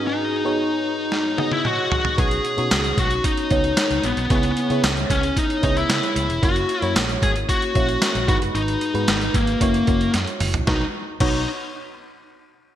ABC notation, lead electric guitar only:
X:1
M:4/4
L:1/16
Q:1/4=113
K:B
V:1 name="Lead electric guitar"
D8- D2 D E F4 | G6 F2 D6 B,2 | B,4 z2 C2 D2 D E4- E | F4 z2 G2 F6 F2 |
D6 A,6 z4 | D z3 D2 z8 z2 |]